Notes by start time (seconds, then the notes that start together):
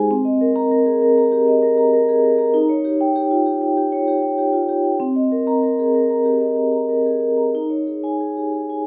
Already playing: D#4 G4 G#4 C5 G#5
0.11 C4
0.25 D#5
0.41 A#4
0.56 A#5
0.71 A#4
0.86 G#4
1.02 A#4
1.18 A#5
1.32 G4
1.48 D#5
1.62 A#4
1.78 A#5
1.93 A#4
2.09 G#4
2.24 A#4
2.38 A#5
2.54 D#4
2.69 C#5
2.85 G4
3.01 G5
3.16 G4
3.31 F4
3.46 G4
3.62 G5
3.77 G4
3.92 C#5
4.08 G4
4.22 G5
4.38 G4
4.53 F4
4.69 G4
4.84 G5
5.00 C4
5.16 D#5
5.32 A#4
5.47 A#5
5.63 A#4
5.79 G#4
5.95 A#4
6.10 A#5
6.25 G4
6.41 D#5
6.56 A#4
6.72 A#5
6.89 A#4
7.06 G#4
7.20 A#4
7.37 A#5
7.55 D#4
7.70 C#5
7.87 G#4
8.04 G#5
8.20 G#4
8.37 G4
8.53 G#4
8.69 G#5